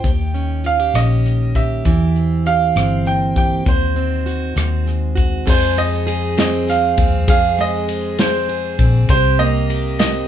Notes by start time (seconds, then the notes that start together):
Already playing: C#4 C5 G5
0.04 D#2 D#3 G4, kick, closed hi-hat
0.34 C#4, closed hi-hat
0.64 F4 F5, closed hi-hat
0.80 G4
0.94 A#1 C#4 D#5, cross-stick, closed hi-hat
1.25 A#3, cross-stick, closed hi-hat
1.55 G4 E5, kick, closed hi-hat
1.85 E2 E3 G4, kick, closed hi-hat
2.16 C4, closed hi-hat
2.46 G4 F5, closed hi-hat
2.76 G1 C4, cross-stick, closed hi-hat
3.05 A#3 G5, cross-stick, closed hi-hat
3.36 G4 G5, kick, closed hi-hat
3.65 D#2 D#3 F#4 C5, kick, closed hi-hat
3.96 C4, closed hi-hat
4.26 F#4, closed hi-hat
4.56 D#2 C4, cross-stick, closed hi-hat
4.86 G#3, cross-stick, closed hi-hat
5.16 F#4, kick, closed hi-hat
5.46 F2 G#4 C5, kick, crash
5.76 G#3 D#5, ride
6.07 G#4, ride
6.37 C4 D#5, snare, ride
6.67 G#4 F5, snare, ride
6.97 D#2 C4, kick, ride
7.28 F2 G#4 F5, kick, ride
7.58 G#3 D#5, ride
7.89 G#4, ride
8.18 C4 C5, snare, ride
8.49 G#4, ride
8.79 A#1 C4, kick, ride
9.09 C2 C3 G4 C5, kick, ride
9.39 A#3 D#5, ride
9.70 G4, ride
9.99 C4 D#5, snare, ride